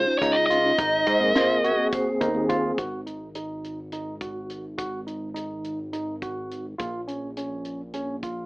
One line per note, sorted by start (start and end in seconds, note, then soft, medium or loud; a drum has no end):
0.00 0.18 C5 medium
0.07 0.58 C#4 medium
0.07 0.58 D#4 medium
0.07 0.59 F4 medium
0.19 0.72 C#2 loud
0.19 0.44 D#4 medium
0.19 0.35 C#5 medium
0.19 kick medium
0.19 snare soft
0.19 closed hi-hat medium
0.32 0.45 D#5 medium
0.46 0.72 F4 medium
0.46 1.87 D#5 medium
0.50 closed hi-hat medium
0.64 0.79 C#4 medium
0.64 0.79 D#4 medium
0.64 0.79 F4 medium
0.78 1.04 G#1 loud
0.78 1.21 D#4 medium
0.78 kick loud
0.78 closed hi-hat medium
0.78 shaker medium
1.07 1.32 G#2 loud
1.07 1.23 C5 medium
1.07 kick medium
1.07 closed hi-hat medium
1.07 shaker soft
1.19 1.72 A#3 medium
1.19 1.72 C4 medium
1.19 1.72 G#4 medium
1.35 1.57 F4 medium
1.35 1.50 C5 medium
1.35 snare loud
1.35 closed hi-hat medium
1.51 1.65 A#4 medium
1.64 2.07 F#4 medium
1.64 1.79 G#4 medium
1.64 closed hi-hat medium
1.64 shaker soft
1.77 2.29 A#3 medium
1.77 2.29 C4 medium
1.77 2.29 G#4 medium
1.92 2.75 C5 medium
1.92 kick medium
1.92 closed hi-hat medium
1.92 shaker medium
2.21 2.72 D#2 medium
2.21 2.43 D#4 medium
2.21 kick medium
2.21 closed hi-hat medium
2.21 shaker soft
2.34 2.78 A#3 medium
2.34 2.78 C4 medium
2.34 2.79 G#4 loud
2.49 2.71 F4 medium
2.49 kick medium
2.49 closed hi-hat medium
2.78 6.75 G#1 medium
2.78 3.00 F#4 medium
2.78 kick medium
2.78 closed hi-hat medium
3.06 3.28 D#4 soft
3.06 closed hi-hat soft
3.35 3.79 D#4 medium
3.35 closed hi-hat medium
3.64 closed hi-hat soft
3.92 4.14 D#4 medium
3.92 closed hi-hat medium
4.21 4.64 F#4 soft
4.21 kick medium
4.21 closed hi-hat soft
4.50 closed hi-hat soft
4.78 5.00 F#4 medium
4.78 kick medium
4.78 closed hi-hat medium
5.07 5.29 D#4 soft
5.07 closed hi-hat soft
5.34 5.78 D#4 medium
5.34 closed hi-hat medium
5.64 closed hi-hat soft
5.93 6.15 D#4 medium
5.93 closed hi-hat medium
6.22 6.65 F#4 medium
6.22 kick medium
6.22 closed hi-hat soft
6.51 closed hi-hat soft
6.78 8.46 A#1 medium
6.78 7.00 F4 medium
6.78 kick medium
6.78 closed hi-hat medium
7.08 7.29 C#4 medium
7.08 closed hi-hat soft
7.37 7.80 C#4 medium
7.37 closed hi-hat medium
7.65 closed hi-hat soft
7.94 8.15 C#4 medium
7.94 closed hi-hat medium
8.23 8.46 F4 medium
8.23 kick medium
8.23 closed hi-hat soft